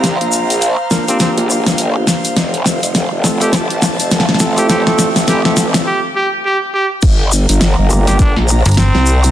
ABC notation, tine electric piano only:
X:1
M:4/4
L:1/16
Q:"Swing 16ths" 1/4=103
K:Gm
V:1 name="Tine electric piano"
z6 [B,DFB] [B,DFG]8- [B,DFG] | z6 [A,CFA] [A,CFA] z6 [A,CFA] [A,CFA] | [A,CFA] [A,CFA]2 z [A,CFA] [A,CFA]2 z8 z | z6 [B,DFG] [B,DFG]2 z6 z |]